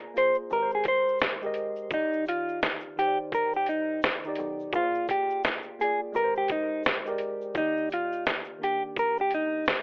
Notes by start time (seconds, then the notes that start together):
Already playing: A#1 A#3 F4 G#4 D5
0.14 A#3 F4 G#4 C5, closed hi-hat, shaker
0.19 C5
0.34 shaker
0.50 G#1 G#3 G4 A#4, shaker
0.56 B4
0.63 C5
0.71 shaker
0.75 G#4
0.84 kick, closed hi-hat, shaker
0.86 C5, shaker
1.08 shaker
1.19 snare, shaker
1.41 G#3 G4 A#4, shaker
1.46 D#5
1.54 closed hi-hat, shaker
1.56 shaker
1.76 shaker
1.77 shaker
1.89 D#2 D#3 D#4 G4, kick, shaker
1.94 D#4 D5
2.13 shaker
2.26 closed hi-hat, shaker
2.28 F4, shaker
2.49 shaker
2.62 snare, shaker
2.80 shaker
2.96 D#3 D#4 G4, closed hi-hat, shaker
3.01 C5
3.07 D5
3.32 A#4, kick, shaker
3.53 G4, shaker
3.66 closed hi-hat, shaker
3.69 D#4, shaker
4.02 snare, shaker
4.24 D#3 D#4 G4, shaker
4.29 D5
4.35 B1, closed hi-hat, shaker
4.39 shaker
4.60 shaker
4.72 A#1 A#3 F4 G#4, kick, shaker
4.77 C5
4.84 D5
4.95 shaker
5.08 kick, closed hi-hat, shaker
5.10 G4, shaker
5.30 shaker
5.44 snare, shaker
5.62 shaker
5.79 A#3 F4 G#4, closed hi-hat, shaker
5.84 D5
6.12 G#1 G#3 G4 A#4, shaker
6.16 B4, shaker
6.24 C5
6.35 G4, shaker
6.48 kick, closed hi-hat, shaker
6.51 D#4, shaker
6.83 shaker
6.85 snare, shaker
7.05 G#3 G4 A#4, shaker
7.10 D5
7.18 closed hi-hat, shaker
7.21 shaker
7.42 shaker
7.54 D#2 D#3 A#3 D#4 D5, kick, shaker
7.59 G4
7.77 shaker
7.90 closed hi-hat, shaker
7.92 F4, shaker
8.13 shaker
8.26 snare, shaker
8.44 shaker
8.58 D#3 A#3 D4
8.63 G4, closed hi-hat, shaker
8.96 A#4, kick, shaker
9.17 G4, shaker
9.31 closed hi-hat, shaker
9.33 D#4, shaker
9.65 snare, shaker